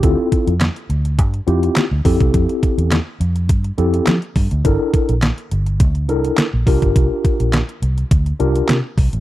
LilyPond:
<<
  \new Staff \with { instrumentName = "Tine electric piano" } { \time 4/4 \key g \dorian \tempo 4 = 104 << { <c' e' f' a'>4 r4. <c' e' f' g'>8 r8 <c' e' g' a'>8~ | <c' e' g' a'>4 r4. <c' e' g' a'>8 r4 | <d' e' a' bes'>4 r4. <d' e' a' bes'>8 r8 <d' f' g' bes'>8~ | <d' f' g' bes'>4 r4. <d' f' g' bes'>8 r4 | } \\ { <d' g'>16 r2. r8. | r1 | r1 | r1 | } >> }
  \new Staff \with { instrumentName = "Fingered electric bass" } { \clef bass \time 4/4 \key g \dorian d,16 r8 f,8 r16 d,8 g,8 f,8 r16 d,16 f,16 c,16 | f,16 r8 e,8 r16 f,8 g,8 f,8 f16 r16 g,16 d,16 | g,,16 r8 bes,,8 r16 g,,8 d,8 c,8 r16 bes,,16 c,16 g,,16 | c,16 r8 bes,,8 r16 c,8 d,8 c,8 c16 r16 c,16 a,,16 | }
  \new DrumStaff \with { instrumentName = "Drums" } \drummode { \time 4/4 <hh bd>8 <hh bd>16 hh16 <hc hh sn>16 hh16 hh16 hh16 <hh bd>16 hh16 hh16 hh16 <hc hh sn>8 <hho bd>16 <hh bd>16 | <hh bd>16 hh16 <hh bd>16 hh16 <hc hh sn>8 hh16 hh16 <hh bd>16 hh16 hh16 hh16 <hc hh sn>16 hh16 <hho bd>16 hh16 | <hh bd>8 <hh bd>16 hh16 <hc hh sn>16 hh16 hh16 hh16 <hh bd>16 hh16 hh16 hh16 <hc hh sn>8 <hho bd>16 <hh bd>16 | <hh bd>8 <hh bd>16 hh16 <hc hh sn>16 hh16 hh16 hh16 <hh bd>16 hh16 hh16 hh16 <hc hh sn>8 <hho bd>16 hh16 | }
>>